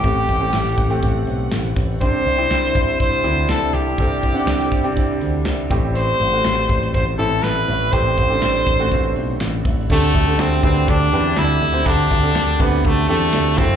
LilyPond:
<<
  \new Staff \with { instrumentName = "Trumpet" } { \time 4/4 \key d \mixolydian \tempo 4 = 122 g'2~ g'8 r4. | c''2 c''4 a'8 g'8~ | g'2~ g'8 r4. | c''2 c''8 a'8 b'4 |
c''2. r4 | a4 c'8 c'8 d'4 e'4 | d'4. b8 a8 a4 c'8 | }
  \new Staff \with { instrumentName = "Grand piano" } { \time 4/4 \key d \mixolydian <a c' g'>8 r16 <a c' g'>8. r16 <a c' g'>4. r8. | <c' d' g'>8 r16 <c' d' e'>4~ <c' d' e'>16 r8 <c' d' e'>4 r8 | <c' d' a'>8 r16 <c' d' fis''>8. r16 <c' d' g'>4. r16 <a c' g'>8~ | <a c' g'>8 r16 <a c' fis'>4~ <a c' fis'>16 r8 <a c' e'>4 r8 |
<a c' g'>8 r16 <a c' d'>8. r16 <a c' fis'>4. r8. | <c' d' g' a'>8 r16 <c' d' g' a'>8 r16 <c' d' g' b'>8. r16 <c' d' g' b'>4 r16 <c' d' g' c''>16 | <c' d' g' a'>8 r16 <c' d' g' a'>8 r16 <c' d' g' b'>8. r16 <c' d' g' a'>4 <c' e' fis' a'>8 | }
  \new Staff \with { instrumentName = "Grand piano" } { \clef bass \time 4/4 \key d \mixolydian a,4 r2. | c4. r2 r8 | c4. r2 a,8~ | a,4 r2 r8 a,8~ |
a,4 r2. | d4. r2 r8 | d4. r2 r8 | }
  \new Staff \with { instrumentName = "String section" } { \time 4/4 \key d \mixolydian << { fis''1 | g1~ | g1~ | g1~ |
g1 | r1 | r1 | } \\ { <a c'>1 | <c d'>1~ | <c d'>2.~ <c d'>8 a8~ | a1~ |
a1 | r1 | r1 | } >> }
  \new Staff \with { instrumentName = "Picked electric bass" } { \clef bass \time 4/4 \key d \mixolydian a,,8 a,,8 a,,8 a,,8 a,,8 b,,8 a,,8 a,,8 | c,8 c,8 c,8 c,8 c,8 d,8 c,8 c,8 | c,8 c,8 c,8 c,8 c,8 d,8 c,8 a,,8~ | a,,8 a,,8 a,,8 a,,8 a,,8 a,,8 a,,8 a,,8 |
a,,8 a,,8 a,,8 a,,8 a,,8 b,,8 a,,8 a,,8 | d,8 d,8 d,8 d,8 d,8 e,8 d,8 d,8 | d,8 d,8 d,8 d,8 d,8 e,8 d,8 fis,,8 | }
  \new DrumStaff \with { instrumentName = "Drums" } \drummode { \time 4/4 <hh bd>8 <hh bd>8 <hc hh sn>16 sn16 <hh bd>16 hh16 <hh bd>8 hh8 <hc hh sn>16 hh16 <hho bd>8 | <hh bd>8 hh8 <hc hh sn>16 sn16 <hh bd>16 hh16 <hh bd>8 hh8 <hc hh sn>8 hh8 | <hh bd>8 <hh bd>8 <hc hh sn>16 sn16 <hh bd>16 hh16 <hh bd>8 hh8 <hc hh sn>16 hh16 <hh bd>8 | hh8 hh8 <hc hh sn>16 sn16 <hh bd>16 hh16 <hh bd>8 hh8 <hc hh sn>8 hh8 |
<hh bd>8 <hh bd>8 <hc hh sn>16 sn16 <hh bd>16 hh16 <hh bd>8 hh8 <hc hh sn>8 <hho bd>8 | <cymc bd>8 <bd cymr>8 <hc cymr sn>16 sn16 <bd cymr>16 cymr16 <bd cymr>8 cymr8 <hc cymr sn>16 cymr16 <hho cymr>8 | <hhp bd cymr>8 <bd cymr>8 <hc cymr sn>16 sn16 <bd cymr>16 cymr16 <bd cymr>8 cymr8 <hc cymr sn>8 <hho bd cymr>8 | }
>>